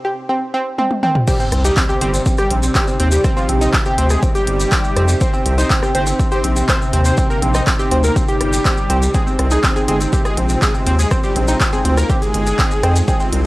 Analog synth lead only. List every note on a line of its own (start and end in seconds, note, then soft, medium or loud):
1.28 1.36 G4 loud
1.40 1.48 C4 medium
1.52 1.61 C4 medium
1.64 1.73 G4 loud
1.77 1.85 C4 medium
1.89 1.98 C4 medium
2.01 2.10 G4 medium
2.14 2.22 C4 medium
2.26 2.34 C4 medium
2.38 2.47 G4 medium
2.51 2.59 C4 medium
2.63 2.71 C4 medium
2.75 2.84 G4 loud
2.88 2.96 C4 medium
3.00 3.08 C4 medium
3.12 3.21 G4 loud
3.24 3.33 C4 medium
3.37 3.45 F4 medium
3.49 3.57 C4 medium
3.61 3.70 C4 medium
3.86 3.94 C4 medium
3.98 4.07 C4 medium
4.11 4.19 G#4 medium
4.23 4.31 C4 medium
4.35 5.11 G4 loud
5.21 5.30 C5 medium
5.34 5.42 C4 medium
5.46 5.54 C4 medium
5.58 5.66 C5 loud
5.70 5.79 C4 medium
5.83 5.91 C4 medium
5.95 6.03 C5 medium
6.07 6.16 C4 medium
6.19 6.28 C4 medium
6.32 6.40 C5 loud
6.44 6.53 C4 medium
6.56 6.65 C4 medium
6.69 6.77 C5 loud
6.81 6.89 C4 medium
6.93 7.02 C4 medium
7.05 7.14 C5 medium
7.18 7.26 C4 medium
7.30 7.39 A#4 medium
7.42 7.51 C4 medium
7.55 7.63 C4 medium
7.79 7.88 C4 medium
7.92 8.00 C4 medium
8.04 8.12 A#4 medium
8.16 8.25 C4 medium
8.28 9.05 G4 loud
9.14 9.23 G#4 loud
9.27 9.35 C4 medium
9.39 9.48 C4 medium
9.51 9.60 G#4 loud
9.64 9.72 C4 medium
9.76 9.85 C4 medium
9.88 9.97 G#4 medium
10.01 10.09 C4 medium
10.13 10.21 C4 medium
10.25 10.34 G#4 loud
10.38 10.46 C4 medium
10.50 10.58 C4 medium
10.62 10.71 G#4 medium
10.74 10.83 C4 medium
10.87 10.95 C4 medium
10.99 11.07 G#4 medium
11.11 11.20 C4 medium
11.24 11.32 G4 medium
11.36 11.44 C4 medium
11.48 11.57 C4 medium
11.73 11.81 C4 medium
11.85 11.94 C4 medium
11.97 12.06 A#4 medium
12.10 12.18 C4 medium
12.22 12.98 G#4 loud
13.08 13.16 G#4 loud
13.20 13.29 C4 medium
13.33 13.41 C4 medium